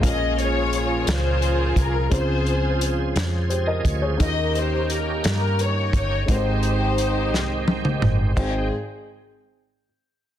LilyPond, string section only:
\new Staff \with { instrumentName = "String section" } { \time 6/8 \key aes \major \tempo 4. = 58 << { ees''8 des''4 c''4 bes'8 | c''4 r2 | ees''8 c''8 bes'8 bes'8 des''8 des''8 | c''2~ c''8 r8 |
aes'8 r2 r8 | } \\ { aes'8 <f' aes'>4 <f' aes'>4. | <f' aes'>4. r4. | <g' bes'>4. r4. | <ees' g'>2~ <ees' g'>8 r8 |
r2. | } >> }